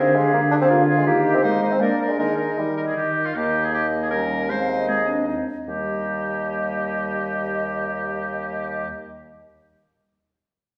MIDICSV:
0, 0, Header, 1, 6, 480
1, 0, Start_track
1, 0, Key_signature, -3, "major"
1, 0, Tempo, 367197
1, 1390, Time_signature, 3, 2, 24, 8
1, 2359, Tempo, 383142
1, 6199, Tempo, 405954
1, 13180, End_track
2, 0, Start_track
2, 0, Title_t, "Flute"
2, 0, Program_c, 0, 73
2, 0, Note_on_c, 0, 77, 40
2, 161, Note_off_c, 0, 77, 0
2, 169, Note_on_c, 0, 77, 39
2, 647, Note_off_c, 0, 77, 0
2, 667, Note_on_c, 0, 77, 44
2, 1130, Note_off_c, 0, 77, 0
2, 1138, Note_on_c, 0, 77, 51
2, 1379, Note_off_c, 0, 77, 0
2, 1615, Note_on_c, 0, 75, 42
2, 1851, Note_off_c, 0, 75, 0
2, 1859, Note_on_c, 0, 75, 40
2, 2077, Note_off_c, 0, 75, 0
2, 2085, Note_on_c, 0, 75, 46
2, 2335, Note_off_c, 0, 75, 0
2, 2343, Note_on_c, 0, 74, 41
2, 2581, Note_off_c, 0, 74, 0
2, 2588, Note_on_c, 0, 74, 39
2, 2829, Note_off_c, 0, 74, 0
2, 2839, Note_on_c, 0, 75, 36
2, 3067, Note_off_c, 0, 75, 0
2, 3075, Note_on_c, 0, 75, 34
2, 3549, Note_off_c, 0, 75, 0
2, 3557, Note_on_c, 0, 75, 35
2, 4033, Note_off_c, 0, 75, 0
2, 4040, Note_on_c, 0, 75, 31
2, 4284, Note_off_c, 0, 75, 0
2, 4289, Note_on_c, 0, 75, 40
2, 4735, Note_off_c, 0, 75, 0
2, 4777, Note_on_c, 0, 75, 36
2, 5731, Note_on_c, 0, 77, 42
2, 5750, Note_off_c, 0, 75, 0
2, 5978, Note_on_c, 0, 75, 43
2, 5997, Note_off_c, 0, 77, 0
2, 6678, Note_off_c, 0, 75, 0
2, 6691, Note_on_c, 0, 75, 37
2, 6762, Note_off_c, 0, 75, 0
2, 7158, Note_on_c, 0, 75, 30
2, 10935, Note_off_c, 0, 75, 0
2, 13180, End_track
3, 0, Start_track
3, 0, Title_t, "Oboe"
3, 0, Program_c, 1, 68
3, 0, Note_on_c, 1, 68, 40
3, 203, Note_off_c, 1, 68, 0
3, 227, Note_on_c, 1, 68, 40
3, 672, Note_off_c, 1, 68, 0
3, 680, Note_on_c, 1, 68, 37
3, 1145, Note_off_c, 1, 68, 0
3, 1155, Note_on_c, 1, 68, 50
3, 1388, Note_off_c, 1, 68, 0
3, 1616, Note_on_c, 1, 67, 48
3, 1859, Note_off_c, 1, 67, 0
3, 1866, Note_on_c, 1, 72, 48
3, 2106, Note_off_c, 1, 72, 0
3, 2132, Note_on_c, 1, 72, 42
3, 2364, Note_off_c, 1, 72, 0
3, 2377, Note_on_c, 1, 70, 40
3, 2602, Note_off_c, 1, 70, 0
3, 2611, Note_on_c, 1, 70, 35
3, 2829, Note_off_c, 1, 70, 0
3, 2837, Note_on_c, 1, 70, 37
3, 3058, Note_off_c, 1, 70, 0
3, 3065, Note_on_c, 1, 70, 35
3, 3551, Note_off_c, 1, 70, 0
3, 3560, Note_on_c, 1, 70, 41
3, 3617, Note_off_c, 1, 70, 0
3, 3687, Note_on_c, 1, 68, 40
3, 3802, Note_off_c, 1, 68, 0
3, 3810, Note_on_c, 1, 67, 49
3, 4170, Note_on_c, 1, 65, 44
3, 4189, Note_off_c, 1, 67, 0
3, 4300, Note_on_c, 1, 67, 51
3, 4319, Note_off_c, 1, 65, 0
3, 4669, Note_on_c, 1, 68, 47
3, 4688, Note_off_c, 1, 67, 0
3, 4772, Note_off_c, 1, 68, 0
3, 4780, Note_on_c, 1, 67, 49
3, 4937, Note_off_c, 1, 67, 0
3, 5139, Note_on_c, 1, 68, 42
3, 5188, Note_off_c, 1, 68, 0
3, 5241, Note_on_c, 1, 70, 51
3, 5730, Note_on_c, 1, 72, 59
3, 5749, Note_off_c, 1, 70, 0
3, 6206, Note_off_c, 1, 72, 0
3, 6213, Note_on_c, 1, 68, 59
3, 6434, Note_off_c, 1, 68, 0
3, 7151, Note_on_c, 1, 67, 36
3, 10932, Note_off_c, 1, 67, 0
3, 13180, End_track
4, 0, Start_track
4, 0, Title_t, "Clarinet"
4, 0, Program_c, 2, 71
4, 0, Note_on_c, 2, 67, 48
4, 895, Note_off_c, 2, 67, 0
4, 903, Note_on_c, 2, 65, 59
4, 1377, Note_off_c, 2, 65, 0
4, 1386, Note_on_c, 2, 67, 61
4, 1853, Note_off_c, 2, 67, 0
4, 1861, Note_on_c, 2, 63, 56
4, 2337, Note_off_c, 2, 63, 0
4, 2345, Note_on_c, 2, 62, 49
4, 2828, Note_on_c, 2, 63, 43
4, 2846, Note_off_c, 2, 62, 0
4, 4049, Note_off_c, 2, 63, 0
4, 4289, Note_on_c, 2, 63, 36
4, 5250, Note_on_c, 2, 61, 38
4, 5268, Note_off_c, 2, 63, 0
4, 5735, Note_on_c, 2, 60, 39
4, 5754, Note_off_c, 2, 61, 0
4, 6194, Note_off_c, 2, 60, 0
4, 6201, Note_on_c, 2, 60, 42
4, 6439, Note_on_c, 2, 62, 44
4, 6457, Note_off_c, 2, 60, 0
4, 6668, Note_on_c, 2, 63, 38
4, 6686, Note_off_c, 2, 62, 0
4, 6911, Note_off_c, 2, 63, 0
4, 7150, Note_on_c, 2, 58, 28
4, 10931, Note_off_c, 2, 58, 0
4, 13180, End_track
5, 0, Start_track
5, 0, Title_t, "Bassoon"
5, 0, Program_c, 3, 70
5, 0, Note_on_c, 3, 60, 66
5, 196, Note_on_c, 3, 56, 61
5, 216, Note_off_c, 3, 60, 0
5, 430, Note_off_c, 3, 56, 0
5, 438, Note_on_c, 3, 58, 58
5, 544, Note_off_c, 3, 58, 0
5, 666, Note_on_c, 3, 62, 77
5, 721, Note_off_c, 3, 62, 0
5, 800, Note_on_c, 3, 60, 69
5, 852, Note_off_c, 3, 60, 0
5, 913, Note_on_c, 3, 58, 58
5, 1074, Note_off_c, 3, 58, 0
5, 1277, Note_on_c, 3, 56, 58
5, 1387, Note_off_c, 3, 56, 0
5, 1395, Note_on_c, 3, 58, 76
5, 1757, Note_on_c, 3, 60, 60
5, 1777, Note_off_c, 3, 58, 0
5, 1871, Note_on_c, 3, 58, 66
5, 1890, Note_off_c, 3, 60, 0
5, 2243, Note_on_c, 3, 60, 64
5, 2263, Note_off_c, 3, 58, 0
5, 2356, Note_on_c, 3, 58, 61
5, 2375, Note_off_c, 3, 60, 0
5, 2722, Note_on_c, 3, 56, 45
5, 2741, Note_off_c, 3, 58, 0
5, 2833, Note_off_c, 3, 56, 0
5, 2841, Note_on_c, 3, 56, 54
5, 3334, Note_on_c, 3, 55, 43
5, 3353, Note_off_c, 3, 56, 0
5, 3816, Note_off_c, 3, 55, 0
5, 4306, Note_on_c, 3, 39, 47
5, 6868, Note_off_c, 3, 39, 0
5, 7153, Note_on_c, 3, 39, 32
5, 10932, Note_off_c, 3, 39, 0
5, 13180, End_track
6, 0, Start_track
6, 0, Title_t, "French horn"
6, 0, Program_c, 4, 60
6, 0, Note_on_c, 4, 50, 54
6, 376, Note_off_c, 4, 50, 0
6, 433, Note_on_c, 4, 50, 54
6, 853, Note_off_c, 4, 50, 0
6, 920, Note_on_c, 4, 50, 62
6, 1338, Note_off_c, 4, 50, 0
6, 1397, Note_on_c, 4, 51, 60
6, 1817, Note_off_c, 4, 51, 0
6, 1878, Note_on_c, 4, 56, 58
6, 2305, Note_off_c, 4, 56, 0
6, 2368, Note_on_c, 4, 58, 52
6, 2786, Note_off_c, 4, 58, 0
6, 2854, Note_on_c, 4, 51, 45
6, 3276, Note_off_c, 4, 51, 0
6, 3339, Note_on_c, 4, 51, 45
6, 3761, Note_off_c, 4, 51, 0
6, 3823, Note_on_c, 4, 51, 43
6, 4246, Note_off_c, 4, 51, 0
6, 4307, Note_on_c, 4, 58, 39
6, 5060, Note_off_c, 4, 58, 0
6, 5273, Note_on_c, 4, 55, 38
6, 5721, Note_off_c, 4, 55, 0
6, 5729, Note_on_c, 4, 56, 38
6, 6227, Note_on_c, 4, 60, 39
6, 6245, Note_off_c, 4, 56, 0
6, 6668, Note_off_c, 4, 60, 0
6, 6675, Note_on_c, 4, 60, 37
6, 6909, Note_off_c, 4, 60, 0
6, 7164, Note_on_c, 4, 55, 32
6, 10938, Note_off_c, 4, 55, 0
6, 13180, End_track
0, 0, End_of_file